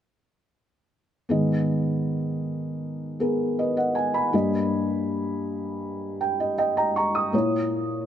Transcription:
0, 0, Header, 1, 2, 480
1, 0, Start_track
1, 0, Tempo, 754717
1, 829, Time_signature, 4, 2, 24, 8
1, 5126, End_track
2, 0, Start_track
2, 0, Title_t, "Felt piano"
2, 0, Program_c, 0, 0
2, 820, Note_on_c, 0, 59, 43
2, 826, Note_on_c, 0, 51, 42
2, 826, Note_on_c, 0, 68, 39
2, 827, Note_on_c, 0, 44, 44
2, 833, Note_on_c, 0, 75, 44
2, 955, Control_c, 0, 64, 127
2, 2008, Note_off_c, 0, 59, 0
2, 2011, Note_off_c, 0, 68, 0
2, 2015, Note_off_c, 0, 75, 0
2, 2034, Note_on_c, 0, 59, 34
2, 2036, Note_on_c, 0, 68, 35
2, 2041, Note_on_c, 0, 70, 37
2, 2279, Note_off_c, 0, 70, 0
2, 2282, Note_on_c, 0, 75, 40
2, 2286, Note_on_c, 0, 71, 35
2, 2389, Note_off_c, 0, 75, 0
2, 2396, Note_off_c, 0, 71, 0
2, 2397, Note_on_c, 0, 78, 41
2, 2399, Note_on_c, 0, 75, 34
2, 2511, Note_off_c, 0, 78, 0
2, 2512, Note_off_c, 0, 75, 0
2, 2512, Note_on_c, 0, 80, 46
2, 2628, Note_off_c, 0, 80, 0
2, 2634, Note_on_c, 0, 83, 43
2, 2639, Note_on_c, 0, 80, 33
2, 2729, Note_off_c, 0, 44, 0
2, 2729, Note_off_c, 0, 51, 0
2, 2752, Note_on_c, 0, 58, 43
2, 2754, Note_off_c, 0, 59, 0
2, 2755, Note_off_c, 0, 68, 0
2, 2756, Note_on_c, 0, 43, 43
2, 2756, Note_on_c, 0, 55, 44
2, 2757, Note_on_c, 0, 67, 42
2, 2762, Control_c, 0, 64, 0
2, 2764, Note_on_c, 0, 75, 49
2, 2862, Note_off_c, 0, 83, 0
2, 2864, Note_off_c, 0, 80, 0
2, 2877, Control_c, 0, 64, 127
2, 3930, Note_off_c, 0, 75, 0
2, 3948, Note_on_c, 0, 79, 45
2, 4071, Note_on_c, 0, 75, 40
2, 4160, Note_off_c, 0, 58, 0
2, 4163, Note_off_c, 0, 67, 0
2, 4170, Note_off_c, 0, 79, 0
2, 4178, Note_off_c, 0, 75, 0
2, 4187, Note_on_c, 0, 75, 52
2, 4187, Note_on_c, 0, 79, 45
2, 4296, Note_off_c, 0, 75, 0
2, 4300, Note_off_c, 0, 79, 0
2, 4306, Note_on_c, 0, 75, 48
2, 4306, Note_on_c, 0, 82, 48
2, 4309, Note_on_c, 0, 79, 38
2, 4419, Note_off_c, 0, 82, 0
2, 4421, Note_off_c, 0, 79, 0
2, 4427, Note_on_c, 0, 85, 46
2, 4433, Note_on_c, 0, 82, 41
2, 4540, Note_off_c, 0, 85, 0
2, 4543, Note_off_c, 0, 82, 0
2, 4547, Note_on_c, 0, 87, 41
2, 4639, Note_off_c, 0, 43, 0
2, 4639, Note_off_c, 0, 55, 0
2, 4639, Note_off_c, 0, 75, 0
2, 4659, Note_on_c, 0, 58, 43
2, 4666, Note_on_c, 0, 46, 44
2, 4666, Note_on_c, 0, 64, 43
2, 4671, Note_on_c, 0, 73, 46
2, 4673, Control_c, 0, 64, 0
2, 4773, Note_off_c, 0, 87, 0
2, 4797, Control_c, 0, 64, 127
2, 5126, Note_off_c, 0, 46, 0
2, 5126, Note_off_c, 0, 58, 0
2, 5126, Note_off_c, 0, 64, 0
2, 5126, Note_off_c, 0, 73, 0
2, 5126, End_track
0, 0, End_of_file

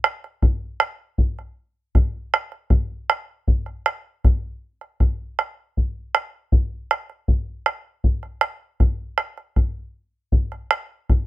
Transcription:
0, 0, Header, 1, 2, 480
1, 0, Start_track
1, 0, Tempo, 762389
1, 756, Time_signature, 3, 2, 24, 8
1, 7094, End_track
2, 0, Start_track
2, 0, Title_t, "Bombo"
2, 26, Note_on_c, 9, 37, 64
2, 89, Note_off_c, 9, 37, 0
2, 152, Note_on_c, 9, 37, 20
2, 215, Note_off_c, 9, 37, 0
2, 267, Note_on_c, 9, 37, 19
2, 267, Note_on_c, 9, 43, 67
2, 330, Note_off_c, 9, 37, 0
2, 330, Note_off_c, 9, 43, 0
2, 504, Note_on_c, 9, 37, 66
2, 567, Note_off_c, 9, 37, 0
2, 745, Note_on_c, 9, 43, 57
2, 807, Note_off_c, 9, 43, 0
2, 873, Note_on_c, 9, 37, 18
2, 936, Note_off_c, 9, 37, 0
2, 1228, Note_on_c, 9, 37, 22
2, 1228, Note_on_c, 9, 43, 69
2, 1291, Note_off_c, 9, 37, 0
2, 1291, Note_off_c, 9, 43, 0
2, 1472, Note_on_c, 9, 37, 66
2, 1535, Note_off_c, 9, 37, 0
2, 1586, Note_on_c, 9, 37, 20
2, 1649, Note_off_c, 9, 37, 0
2, 1702, Note_on_c, 9, 37, 20
2, 1702, Note_on_c, 9, 43, 69
2, 1765, Note_off_c, 9, 37, 0
2, 1765, Note_off_c, 9, 43, 0
2, 1949, Note_on_c, 9, 37, 68
2, 2012, Note_off_c, 9, 37, 0
2, 2189, Note_on_c, 9, 43, 61
2, 2252, Note_off_c, 9, 43, 0
2, 2306, Note_on_c, 9, 37, 20
2, 2369, Note_off_c, 9, 37, 0
2, 2430, Note_on_c, 9, 37, 64
2, 2493, Note_off_c, 9, 37, 0
2, 2673, Note_on_c, 9, 37, 20
2, 2673, Note_on_c, 9, 43, 71
2, 2736, Note_off_c, 9, 37, 0
2, 2736, Note_off_c, 9, 43, 0
2, 3030, Note_on_c, 9, 37, 19
2, 3093, Note_off_c, 9, 37, 0
2, 3150, Note_on_c, 9, 37, 18
2, 3150, Note_on_c, 9, 43, 60
2, 3213, Note_off_c, 9, 37, 0
2, 3213, Note_off_c, 9, 43, 0
2, 3392, Note_on_c, 9, 37, 58
2, 3455, Note_off_c, 9, 37, 0
2, 3635, Note_on_c, 9, 43, 49
2, 3698, Note_off_c, 9, 43, 0
2, 3870, Note_on_c, 9, 37, 58
2, 3932, Note_off_c, 9, 37, 0
2, 4107, Note_on_c, 9, 43, 62
2, 4170, Note_off_c, 9, 43, 0
2, 4350, Note_on_c, 9, 37, 58
2, 4413, Note_off_c, 9, 37, 0
2, 4467, Note_on_c, 9, 37, 18
2, 4530, Note_off_c, 9, 37, 0
2, 4585, Note_on_c, 9, 43, 58
2, 4648, Note_off_c, 9, 43, 0
2, 4823, Note_on_c, 9, 37, 58
2, 4886, Note_off_c, 9, 37, 0
2, 5062, Note_on_c, 9, 43, 55
2, 5125, Note_off_c, 9, 43, 0
2, 5181, Note_on_c, 9, 37, 18
2, 5244, Note_off_c, 9, 37, 0
2, 5296, Note_on_c, 9, 37, 61
2, 5359, Note_off_c, 9, 37, 0
2, 5541, Note_on_c, 9, 37, 22
2, 5541, Note_on_c, 9, 43, 66
2, 5604, Note_off_c, 9, 37, 0
2, 5604, Note_off_c, 9, 43, 0
2, 5778, Note_on_c, 9, 37, 59
2, 5841, Note_off_c, 9, 37, 0
2, 5903, Note_on_c, 9, 37, 20
2, 5966, Note_off_c, 9, 37, 0
2, 6021, Note_on_c, 9, 37, 19
2, 6021, Note_on_c, 9, 43, 62
2, 6084, Note_off_c, 9, 37, 0
2, 6084, Note_off_c, 9, 43, 0
2, 6499, Note_on_c, 9, 43, 61
2, 6562, Note_off_c, 9, 43, 0
2, 6622, Note_on_c, 9, 37, 21
2, 6685, Note_off_c, 9, 37, 0
2, 6741, Note_on_c, 9, 37, 70
2, 6804, Note_off_c, 9, 37, 0
2, 6985, Note_on_c, 9, 37, 20
2, 6985, Note_on_c, 9, 43, 68
2, 7048, Note_off_c, 9, 37, 0
2, 7048, Note_off_c, 9, 43, 0
2, 7094, End_track
0, 0, End_of_file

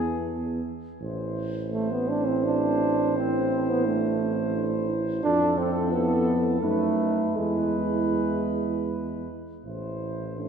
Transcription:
0, 0, Header, 1, 6, 480
1, 0, Start_track
1, 0, Key_signature, 0, "minor"
1, 0, Tempo, 797872
1, 598, Time_signature, 3, 2, 24, 8
1, 598, Tempo, 721154
1, 2038, Tempo, 692042
1, 4438, Tempo, 750000
1, 6914, End_track
2, 0, Start_track
2, 0, Title_t, "Trumpet section"
2, 0, Program_c, 0, 61
2, 0, Note_on_c, 0, 68, 73
2, 122, Note_off_c, 0, 68, 0
2, 609, Note_on_c, 0, 72, 65
2, 3459, Note_off_c, 0, 72, 0
2, 3489, Note_on_c, 0, 69, 73
2, 4415, Note_off_c, 0, 69, 0
2, 4438, Note_on_c, 0, 71, 58
2, 4912, Note_off_c, 0, 71, 0
2, 4920, Note_on_c, 0, 71, 60
2, 6140, Note_off_c, 0, 71, 0
2, 6371, Note_on_c, 0, 72, 46
2, 6811, Note_off_c, 0, 72, 0
2, 6841, Note_on_c, 0, 72, 51
2, 6914, Note_off_c, 0, 72, 0
2, 6914, End_track
3, 0, Start_track
3, 0, Title_t, "French horn section"
3, 0, Program_c, 1, 60
3, 0, Note_on_c, 1, 64, 68
3, 369, Note_off_c, 1, 64, 0
3, 603, Note_on_c, 1, 64, 63
3, 3456, Note_off_c, 1, 64, 0
3, 3489, Note_on_c, 1, 64, 66
3, 4415, Note_off_c, 1, 64, 0
3, 4444, Note_on_c, 1, 63, 58
3, 4909, Note_off_c, 1, 63, 0
3, 4919, Note_on_c, 1, 64, 62
3, 6165, Note_off_c, 1, 64, 0
3, 6372, Note_on_c, 1, 64, 46
3, 6812, Note_off_c, 1, 64, 0
3, 6835, Note_on_c, 1, 64, 54
3, 6914, Note_off_c, 1, 64, 0
3, 6914, End_track
4, 0, Start_track
4, 0, Title_t, "Euphonium"
4, 0, Program_c, 2, 58
4, 0, Note_on_c, 2, 59, 60
4, 369, Note_off_c, 2, 59, 0
4, 1088, Note_on_c, 2, 60, 65
4, 2015, Note_off_c, 2, 60, 0
4, 2044, Note_on_c, 2, 64, 69
4, 2532, Note_on_c, 2, 62, 59
4, 2542, Note_off_c, 2, 64, 0
4, 2770, Note_on_c, 2, 60, 62
4, 2780, Note_off_c, 2, 62, 0
4, 3002, Note_on_c, 2, 62, 62
4, 3013, Note_off_c, 2, 60, 0
4, 3239, Note_on_c, 2, 64, 67
4, 3249, Note_off_c, 2, 62, 0
4, 3478, Note_off_c, 2, 64, 0
4, 3482, Note_on_c, 2, 65, 74
4, 3953, Note_on_c, 2, 64, 67
4, 3963, Note_off_c, 2, 65, 0
4, 4443, Note_on_c, 2, 63, 62
4, 4453, Note_off_c, 2, 64, 0
4, 4814, Note_off_c, 2, 63, 0
4, 4923, Note_on_c, 2, 64, 65
4, 6114, Note_off_c, 2, 64, 0
4, 6841, Note_on_c, 2, 62, 53
4, 6914, Note_off_c, 2, 62, 0
4, 6914, End_track
5, 0, Start_track
5, 0, Title_t, "Trombone"
5, 0, Program_c, 3, 57
5, 0, Note_on_c, 3, 52, 62
5, 368, Note_off_c, 3, 52, 0
5, 1083, Note_on_c, 3, 57, 74
5, 1209, Note_on_c, 3, 59, 67
5, 1219, Note_off_c, 3, 57, 0
5, 1325, Note_on_c, 3, 62, 76
5, 1335, Note_off_c, 3, 59, 0
5, 1447, Note_on_c, 3, 60, 74
5, 1457, Note_off_c, 3, 62, 0
5, 1564, Note_on_c, 3, 62, 89
5, 1574, Note_off_c, 3, 60, 0
5, 2046, Note_on_c, 3, 60, 74
5, 2057, Note_off_c, 3, 62, 0
5, 2412, Note_on_c, 3, 59, 76
5, 2423, Note_off_c, 3, 60, 0
5, 2532, Note_on_c, 3, 57, 72
5, 2542, Note_off_c, 3, 59, 0
5, 3246, Note_off_c, 3, 57, 0
5, 3481, Note_on_c, 3, 62, 101
5, 3719, Note_on_c, 3, 60, 80
5, 3729, Note_off_c, 3, 62, 0
5, 3951, Note_on_c, 3, 59, 82
5, 3962, Note_off_c, 3, 60, 0
5, 4431, Note_off_c, 3, 59, 0
5, 4435, Note_on_c, 3, 57, 80
5, 4912, Note_on_c, 3, 56, 68
5, 4922, Note_off_c, 3, 57, 0
5, 6133, Note_off_c, 3, 56, 0
5, 6841, Note_on_c, 3, 57, 59
5, 6914, Note_off_c, 3, 57, 0
5, 6914, End_track
6, 0, Start_track
6, 0, Title_t, "Tuba"
6, 0, Program_c, 4, 58
6, 0, Note_on_c, 4, 40, 71
6, 369, Note_off_c, 4, 40, 0
6, 603, Note_on_c, 4, 33, 63
6, 3456, Note_off_c, 4, 33, 0
6, 3486, Note_on_c, 4, 41, 62
6, 4414, Note_off_c, 4, 41, 0
6, 4443, Note_on_c, 4, 42, 61
6, 4812, Note_off_c, 4, 42, 0
6, 4921, Note_on_c, 4, 40, 58
6, 6140, Note_off_c, 4, 40, 0
6, 6376, Note_on_c, 4, 33, 48
6, 6914, Note_off_c, 4, 33, 0
6, 6914, End_track
0, 0, End_of_file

